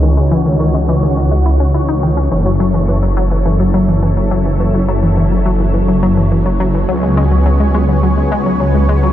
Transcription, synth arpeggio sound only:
\new Staff \with { instrumentName = "Synth arpeggio sound" } { \clef bass \time 4/4 \key fis \dorian \tempo 4 = 105 dis16 gis16 e16 dis16 dis16 gis16 e16 dis16 dis16 gis16 e'16 cis'16 e'16 dis'16 dis16 cis'16 | e16 fis16 fis16 e16 e16 fis16 fis16 e16 e16 fis16 fis16 e16 e16 fis16 fis16 e16 | e16 fis16 fis16 e16 e16 fis16 fis16 e16 e16 fis16 fis16 e16 e16 fis16 fis16 e16 | fis16 gis16 gis16 fis16 fis16 gis16 gis16 fis16 fis16 gis16 gis16 fis16 fis16 gis16 gis16 fis16 | }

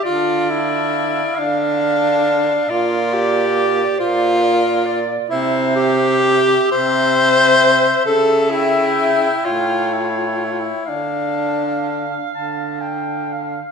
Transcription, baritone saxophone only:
\new Staff \with { instrumentName = "Baritone saxophone" } { \clef bass \time 6/8 \key d \minor \tempo 4. = 44 d4. d4. | bes,4. bes,4. | c4. c4. | cis4. a,4. |
d4. d4. | }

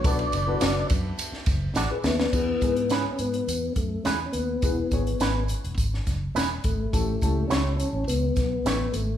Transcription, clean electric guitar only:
\new Staff \with { instrumentName = "Clean electric guitar" } { \time 4/4 \key e \mixolydian \tempo 4 = 104 r4 <d' fis' a' d''>8 r4. <d' fis' a' d''>8 r8 | r4 <b e' gis' b'>8 r4. <b e' gis' b'>8 r8 | r4 <b e' gis' b'>8 r4. <b e' gis' b'>8 r8 | r4 <a e' g' cis''>8 r4. <a e' g' cis''>8 r8 | }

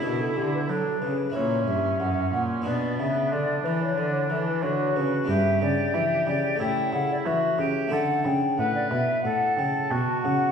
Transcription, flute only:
\new Staff \with { instrumentName = "Flute" } { \time 4/4 \key b \minor \tempo 4 = 91 fis'16 a'16 g'16 b'16 a'8 b'8 cis''8 e''8 fis''8. r16 | d''8 e''8 d''8 b'16 cis''16 d''16 cis''16 a'16 b'16 cis''8 b'8 | \key d \major e''8 d''8 e''8 d''8 g''8 fis''16 d''16 e''4 | fis''8 g''8 fis''16 d''16 e''8 fis''8 g''8 a''8 fis''8 | }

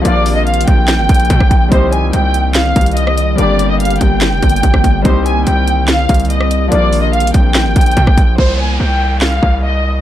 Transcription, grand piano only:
\new Staff \with { instrumentName = "Grand piano" } { \time 4/4 \key c \minor \tempo 4 = 144 <f bes d' f'>1 | <g c' ees' g'>1 | <g bes d' g'>1 | <g c' ees' g'>1 |
<f bes d' f'>1 | r1 | }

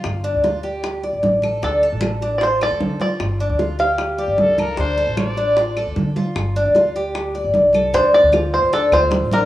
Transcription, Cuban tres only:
\new Staff \with { instrumentName = "Cuban tres" } { \time 4/4 \key d \minor \tempo 4 = 152 f'8 d'8 f'8 g'4 d''4 a'8 | d'8 a'4 d'8 f'8 a'4 f'8~ | f'8 d'8 f'8 g'4 d''4 a'8 | d'8 a'4 d'8 f'8 a'4 f'8~ |
f'8 d'8 f'8 g'4 d''4 a'8 | d'4 f'4 d'8 f'4 d'8 | }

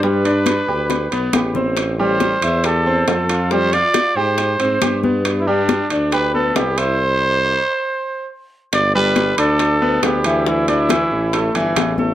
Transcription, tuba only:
\new Staff \with { instrumentName = "Tuba" } { \clef bass \time 4/4 \key g \mixolydian \tempo 4 = 138 g,4. d,4 b,,8 a,,4~ | a,,4. e,4. f,4~ | f,4 r8 aes,4 aes,8 g,4~ | g,4. d,4. c,4~ |
c,4. r2 r8 | g,,4. d,4. d,4~ | d,4. a,,4 g,,8 a,,4 | }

